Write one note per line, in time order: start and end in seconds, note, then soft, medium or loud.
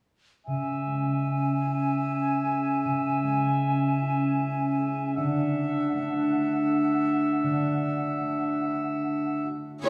0.46 2.83 C#3 soft
0.46 5.12 C#4 soft
0.46 5.12 E5 soft
0.46 5.11 G#5 soft
0.87 3.22 G#3 soft
1.26 3.61 C#4 soft
1.66 4.00 E4 soft
2.05 4.39 C#5 soft
2.44 4.77 G#4 soft
2.84 5.19 C#3 soft
3.23 5.19 G#3 soft
3.63 5.19 C#4 soft
4.02 6.28 E4 soft
4.40 5.19 C#5 soft
4.78 5.19 G#4 soft
5.15 7.42 D3 soft
5.15 9.48 D4 soft
5.15 9.49 E5 soft
5.15 9.48 F#5 soft
5.55 7.79 D4 soft
5.92 8.19 A3 soft
6.29 8.59 E4 soft
6.67 9.00 A4 soft
7.05 9.43 F#4 soft
7.43 9.89 D3 soft
7.81 9.89 D4 soft
8.20 9.89 A3 soft
8.60 9.89 E4 soft
9.01 9.89 A4 soft
9.44 9.89 F#4 soft
9.86 9.89 C#3 soft
9.86 9.89 E3 soft
9.86 9.89 E4 soft